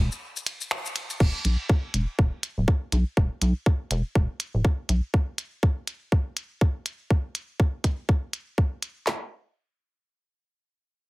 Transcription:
0.12 shaker
0.36 shaker
0.46 closed hi-hat, ride
0.61 shaker
0.71 finger snap
0.86 shaker
0.96 closed hi-hat, ride
1.10 ride, shaker
1.20 analog synth bass E1, kick, crash
1.45 analog synth bass B1, closed hi-hat
1.69 kick
1.94 analog synth bass E1, closed hi-hat
2.19 analog synth bass E1, kick
2.43 closed hi-hat
2.58 analog synth bass D1
2.68 kick
2.92 analog synth bass B1, closed hi-hat
3.17 analog synth bass E1, kick
3.42 analog synth bass B1, closed hi-hat
3.66 kick
3.91 analog synth bass E1, closed hi-hat
4.15 analog synth bass E1, kick
4.40 closed hi-hat
4.54 analog synth bass D1
4.65 kick
4.89 analog synth bass B1, closed hi-hat
5.14 kick
5.38 closed hi-hat
5.63 kick
5.87 closed hi-hat
6.12 kick
6.37 closed hi-hat
6.61 kick
6.86 closed hi-hat
7.10 kick
7.35 closed hi-hat
7.60 kick
7.84 kick, closed hi-hat
8.09 kick
8.33 closed hi-hat
8.58 kick
8.83 closed hi-hat
9.07 snare, clap

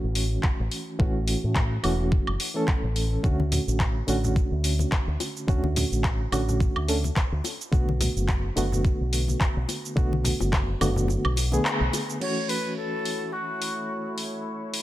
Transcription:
Already playing: reed electric piano E3 A3 C#4 F#4
0.04 fingered electric bass A1
0.15 open hi-hat
0.43 kick, clap
0.60 fingered electric bass A1
0.71 open hi-hat
0.99 fingered electric bass A1, reed electric piano E3 A3 C#4 F#4, kick
1.28 open hi-hat
1.44 fingered electric bass A2
1.55 kick, clap
1.83 fingered electric bass E1, reed electric piano E3 A3 C#4 F#4, open hi-hat, high woodblock
2.12 kick
2.27 fingered electric bass F#1, high woodblock
2.40 open hi-hat
2.54 reed electric piano E3 A3 C#4 A4
2.68 kick, clap
2.83 fingered electric bass A1
2.96 open hi-hat
3.23 fingered electric bass D2, reed electric piano D3 A3 C#4 F#4, kick, shaker
3.40 high conga
3.52 open hi-hat, low conga, shaker
3.68 fingered electric bass A1, shaker
3.80 kick, clap, shaker
4.07 fingered electric bass A1, reed electric piano D3 A3 C#4 F#4, open hi-hat, high conga, shaker
4.24 low conga, shaker
4.36 muted fingered electric bass stroke, kick, shaker
4.51 fingered electric bass D2
4.64 open hi-hat, shaker
4.79 high conga, shaker
4.92 kick, clap, shaker
5.07 fingered electric bass D2
5.20 open hi-hat, high bongo, shaker
5.37 shaker
5.47 fingered electric bass D2, reed electric piano D3 A3 C#4 F#4, kick, shaker
5.64 high conga
5.76 open hi-hat, low conga, shaker
5.92 fingered electric bass A1, shaker
6.04 kick, clap, shaker
6.32 fingered electric bass A1, reed electric piano D3 A3 C#4 F#4, open hi-hat, high conga, high woodblock, shaker
6.49 low conga, shaker
6.60 kick, shaker
6.76 fingered electric bass D2, high woodblock
6.88 reed electric piano D3 A3 C#4 A4, open hi-hat, shaker
7.04 high conga, shaker
7.16 kick, clap, shaker
7.32 fingered electric bass D2
7.44 open hi-hat, high bongo, shaker
7.61 shaker
7.72 fingered electric bass B1, reed electric piano D3 A3 B3 F#4, kick, shaker
7.89 high conga
8.01 open hi-hat, low conga, shaker
8.16 fingered electric bass F#1, shaker
8.28 kick, clap, shaker
8.56 fingered electric bass F#1, reed electric piano D3 A3 B3 F#4, open hi-hat, high conga, shaker
8.72 low conga, shaker
8.85 muted fingered electric bass stroke, kick, shaker
9.01 fingered electric bass B1
9.13 open hi-hat, shaker
9.28 high conga, shaker
9.41 kick, clap, shaker
9.56 fingered electric bass B1
9.68 open hi-hat, high bongo, shaker
9.85 shaker
9.96 fingered electric bass B1, reed electric piano D3 A3 B3 F#4, kick, shaker
10.13 high conga
10.24 open hi-hat, low conga, shaker
10.40 fingered electric bass F#1, high bongo, shaker
10.53 kick, clap, shaker
10.81 fingered electric bass F#1, reed electric piano D3 A3 B3 F#4, open hi-hat, high conga, high woodblock, shaker
10.96 low conga, shaker
11.08 high bongo, shaker
11.25 fingered electric bass B1, high woodblock
11.36 open hi-hat, high bongo, shaker
11.51 reed electric piano D3 A3 B3 G#4, high conga, shaker
11.65 clap, shaker
11.80 fingered electric bass B1
11.93 open hi-hat, high bongo, shaker
12.10 shaker
12.20 reed electric piano E3 A3 C#4 F#4, string section A3 E4 F#4 C#5, flute C#5, crash
12.49 flute B4, open hi-hat
12.77 flute A4
13.05 open hi-hat
13.32 flute F#4
13.62 open hi-hat
14.18 open hi-hat
14.74 open hi-hat

